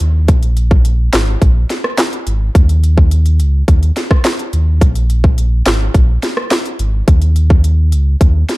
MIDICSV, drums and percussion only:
0, 0, Header, 1, 2, 480
1, 0, Start_track
1, 0, Tempo, 566038
1, 242, Time_signature, 4, 2, 24, 8
1, 7270, End_track
2, 0, Start_track
2, 0, Title_t, "Drums"
2, 0, Note_on_c, 9, 42, 80
2, 84, Note_off_c, 9, 42, 0
2, 240, Note_on_c, 9, 42, 76
2, 242, Note_on_c, 9, 36, 126
2, 325, Note_off_c, 9, 42, 0
2, 326, Note_off_c, 9, 36, 0
2, 361, Note_on_c, 9, 42, 59
2, 446, Note_off_c, 9, 42, 0
2, 481, Note_on_c, 9, 42, 70
2, 565, Note_off_c, 9, 42, 0
2, 602, Note_on_c, 9, 36, 110
2, 687, Note_off_c, 9, 36, 0
2, 719, Note_on_c, 9, 42, 75
2, 804, Note_off_c, 9, 42, 0
2, 959, Note_on_c, 9, 42, 72
2, 961, Note_on_c, 9, 38, 116
2, 965, Note_on_c, 9, 39, 94
2, 1044, Note_off_c, 9, 42, 0
2, 1046, Note_off_c, 9, 38, 0
2, 1050, Note_off_c, 9, 39, 0
2, 1201, Note_on_c, 9, 36, 100
2, 1201, Note_on_c, 9, 42, 67
2, 1286, Note_off_c, 9, 36, 0
2, 1286, Note_off_c, 9, 42, 0
2, 1443, Note_on_c, 9, 38, 62
2, 1443, Note_on_c, 9, 42, 69
2, 1528, Note_off_c, 9, 38, 0
2, 1528, Note_off_c, 9, 42, 0
2, 1563, Note_on_c, 9, 37, 105
2, 1648, Note_off_c, 9, 37, 0
2, 1681, Note_on_c, 9, 38, 117
2, 1684, Note_on_c, 9, 42, 80
2, 1685, Note_on_c, 9, 39, 92
2, 1766, Note_off_c, 9, 38, 0
2, 1769, Note_off_c, 9, 42, 0
2, 1770, Note_off_c, 9, 39, 0
2, 1805, Note_on_c, 9, 42, 50
2, 1889, Note_off_c, 9, 42, 0
2, 1922, Note_on_c, 9, 42, 81
2, 2007, Note_off_c, 9, 42, 0
2, 2163, Note_on_c, 9, 36, 127
2, 2164, Note_on_c, 9, 42, 79
2, 2247, Note_off_c, 9, 36, 0
2, 2249, Note_off_c, 9, 42, 0
2, 2283, Note_on_c, 9, 42, 57
2, 2368, Note_off_c, 9, 42, 0
2, 2404, Note_on_c, 9, 42, 68
2, 2489, Note_off_c, 9, 42, 0
2, 2523, Note_on_c, 9, 36, 103
2, 2608, Note_off_c, 9, 36, 0
2, 2640, Note_on_c, 9, 42, 74
2, 2725, Note_off_c, 9, 42, 0
2, 2761, Note_on_c, 9, 42, 59
2, 2846, Note_off_c, 9, 42, 0
2, 2880, Note_on_c, 9, 42, 73
2, 2965, Note_off_c, 9, 42, 0
2, 3121, Note_on_c, 9, 36, 97
2, 3121, Note_on_c, 9, 42, 69
2, 3206, Note_off_c, 9, 36, 0
2, 3206, Note_off_c, 9, 42, 0
2, 3245, Note_on_c, 9, 42, 46
2, 3330, Note_off_c, 9, 42, 0
2, 3363, Note_on_c, 9, 38, 66
2, 3364, Note_on_c, 9, 42, 70
2, 3448, Note_off_c, 9, 38, 0
2, 3448, Note_off_c, 9, 42, 0
2, 3483, Note_on_c, 9, 36, 100
2, 3484, Note_on_c, 9, 37, 105
2, 3567, Note_off_c, 9, 36, 0
2, 3569, Note_off_c, 9, 37, 0
2, 3601, Note_on_c, 9, 38, 119
2, 3604, Note_on_c, 9, 42, 75
2, 3606, Note_on_c, 9, 39, 90
2, 3686, Note_off_c, 9, 38, 0
2, 3689, Note_off_c, 9, 42, 0
2, 3691, Note_off_c, 9, 39, 0
2, 3725, Note_on_c, 9, 42, 50
2, 3810, Note_off_c, 9, 42, 0
2, 3842, Note_on_c, 9, 42, 79
2, 3927, Note_off_c, 9, 42, 0
2, 4082, Note_on_c, 9, 36, 126
2, 4083, Note_on_c, 9, 42, 80
2, 4167, Note_off_c, 9, 36, 0
2, 4167, Note_off_c, 9, 42, 0
2, 4201, Note_on_c, 9, 42, 59
2, 4286, Note_off_c, 9, 42, 0
2, 4323, Note_on_c, 9, 42, 72
2, 4407, Note_off_c, 9, 42, 0
2, 4443, Note_on_c, 9, 36, 106
2, 4528, Note_off_c, 9, 36, 0
2, 4561, Note_on_c, 9, 42, 79
2, 4646, Note_off_c, 9, 42, 0
2, 4800, Note_on_c, 9, 42, 72
2, 4802, Note_on_c, 9, 38, 115
2, 4806, Note_on_c, 9, 39, 95
2, 4885, Note_off_c, 9, 42, 0
2, 4887, Note_off_c, 9, 38, 0
2, 4891, Note_off_c, 9, 39, 0
2, 5041, Note_on_c, 9, 36, 100
2, 5042, Note_on_c, 9, 42, 72
2, 5126, Note_off_c, 9, 36, 0
2, 5127, Note_off_c, 9, 42, 0
2, 5284, Note_on_c, 9, 38, 69
2, 5284, Note_on_c, 9, 42, 71
2, 5368, Note_off_c, 9, 38, 0
2, 5369, Note_off_c, 9, 42, 0
2, 5402, Note_on_c, 9, 37, 107
2, 5487, Note_off_c, 9, 37, 0
2, 5521, Note_on_c, 9, 38, 115
2, 5524, Note_on_c, 9, 42, 76
2, 5526, Note_on_c, 9, 39, 97
2, 5606, Note_off_c, 9, 38, 0
2, 5609, Note_off_c, 9, 42, 0
2, 5611, Note_off_c, 9, 39, 0
2, 5644, Note_on_c, 9, 42, 49
2, 5728, Note_off_c, 9, 42, 0
2, 5760, Note_on_c, 9, 42, 81
2, 5845, Note_off_c, 9, 42, 0
2, 6001, Note_on_c, 9, 36, 122
2, 6001, Note_on_c, 9, 42, 80
2, 6086, Note_off_c, 9, 36, 0
2, 6086, Note_off_c, 9, 42, 0
2, 6119, Note_on_c, 9, 42, 58
2, 6204, Note_off_c, 9, 42, 0
2, 6240, Note_on_c, 9, 42, 67
2, 6325, Note_off_c, 9, 42, 0
2, 6362, Note_on_c, 9, 36, 107
2, 6446, Note_off_c, 9, 36, 0
2, 6479, Note_on_c, 9, 42, 76
2, 6564, Note_off_c, 9, 42, 0
2, 6718, Note_on_c, 9, 42, 71
2, 6803, Note_off_c, 9, 42, 0
2, 6960, Note_on_c, 9, 36, 103
2, 6961, Note_on_c, 9, 42, 72
2, 7045, Note_off_c, 9, 36, 0
2, 7046, Note_off_c, 9, 42, 0
2, 7202, Note_on_c, 9, 38, 63
2, 7202, Note_on_c, 9, 42, 66
2, 7270, Note_off_c, 9, 38, 0
2, 7270, Note_off_c, 9, 42, 0
2, 7270, End_track
0, 0, End_of_file